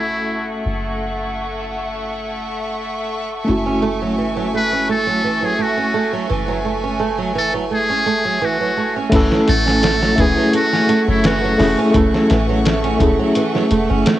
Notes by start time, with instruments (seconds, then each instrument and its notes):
Already playing: 808-style bass F#1, tine electric piano A3 C#4 E4 F#4, violin section A3 E5 F#5 C#6, impact
0.00 muted trumpet E4
0.66 808-style bass F#1
3.45 tine electric piano A3 C#4, nylon-string guitar A3, violin section G#5
3.49 808-style bass F#1, tine electric piano E4 F#4
3.66 nylon-string guitar C#4
3.82 nylon-string guitar A3
4.02 nylon-string guitar F#3
4.18 nylon-string guitar E3
4.37 nylon-string guitar F#3
4.54 nylon-string guitar A3, muted trumpet B4
4.73 nylon-string guitar C#4
4.89 nylon-string guitar A3, muted trumpet A4
5.07 nylon-string guitar F#3
5.24 nylon-string guitar E3
5.42 nylon-string guitar F#3, muted trumpet G#4
5.59 nylon-string guitar A3, muted trumpet F#4
5.77 nylon-string guitar C#4
5.94 nylon-string guitar A3
6.13 nylon-string guitar F#3
6.29 808-style bass F#1, nylon-string guitar E3
6.48 nylon-string guitar F#3
6.65 nylon-string guitar A3
6.84 nylon-string guitar C#4
7.00 nylon-string guitar A3
7.18 nylon-string guitar F#3
7.35 nylon-string guitar E3, muted trumpet A4
7.54 nylon-string guitar F#3
7.71 nylon-string guitar A3, muted trumpet G#4
7.90 nylon-string guitar C#4
8.06 nylon-string guitar A3
8.25 nylon-string guitar F#3
8.41 nylon-string guitar E3, muted trumpet F#4
8.60 nylon-string guitar F#3
8.77 nylon-string guitar A3
8.96 nylon-string guitar C#4
9.10 808-style bass F#1, nylon-string guitar E3, tine electric piano A3 C#4 E4, violin section A3 E5 F#5 C#6, kick, closed hi-hat, crash
9.16 tine electric piano A4
9.31 nylon-string guitar F#3, snare
9.48 808-style bass A1, nylon-string guitar A3, muted trumpet A4, closed hi-hat
9.66 nylon-string guitar C#4, snare
9.83 nylon-string guitar A3, snare, closed hi-hat
10.02 nylon-string guitar F#3, snare
10.16 808-style bass E1, nylon-string guitar E3, tine electric piano A3 C#4 E4, kick, closed hi-hat
10.20 muted trumpet G#4, tine electric piano G#4
10.37 nylon-string guitar F#3
10.54 nylon-string guitar A3, muted trumpet F#4, closed hi-hat
10.73 nylon-string guitar C#4, snare
10.89 nylon-string guitar A3, closed hi-hat
11.08 808-style bass F#1, nylon-string guitar F#3, muted trumpet E4
11.24 nylon-string guitar E3, muted trumpet F#4, snare, closed hi-hat
11.44 nylon-string guitar F#3
11.58 808-style bass E1, tine electric piano A3 C#4 E4 G#4, nylon-string guitar A3, snare, open hi-hat
11.78 nylon-string guitar C#4
11.91 808-style bass F#1, tine electric piano A3 C#4, nylon-string guitar A3, kick, closed hi-hat
11.95 tine electric piano E4 A4
12.14 nylon-string guitar F#3, snare
12.30 808-style bass A1, nylon-string guitar E3, snare, closed hi-hat
12.49 nylon-string guitar F#3
12.66 nylon-string guitar A3, snare, closed hi-hat
12.84 nylon-string guitar C#4, closed hi-hat
12.97 808-style bass E1, tine electric piano A3 C#4, nylon-string guitar A3, kick, closed hi-hat
13.01 tine electric piano E4 G#4
13.19 nylon-string guitar F#3
13.35 nylon-string guitar E3, closed hi-hat
13.55 nylon-string guitar F#3, snare
13.71 808-style bass E1, nylon-string guitar A3, closed hi-hat
13.90 808-style bass F#1, nylon-string guitar C#4
14.06 nylon-string guitar A3, snare, closed hi-hat